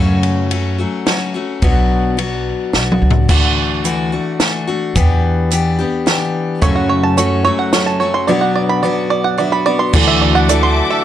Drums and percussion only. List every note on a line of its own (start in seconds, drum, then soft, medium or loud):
0.23 ride soft
0.51 ride medium
1.07 snare medium
1.07 ride medium
1.62 kick loud
1.62 ride medium
2.18 ride medium
2.73 snare soft
2.92 mid tom medium
3.11 floor tom medium
3.29 kick loud
3.29 crash medium
3.85 closed hi-hat soft
4.40 snare medium
4.40 closed hi-hat medium
4.96 kick loud
4.96 closed hi-hat medium
5.51 closed hi-hat soft
6.07 snare medium
6.07 closed hi-hat medium
6.62 kick loud
6.62 closed hi-hat medium
7.18 closed hi-hat medium
7.73 snare medium
7.73 closed hi-hat medium
9.94 kick loud
9.94 crash loud
10.49 closed hi-hat medium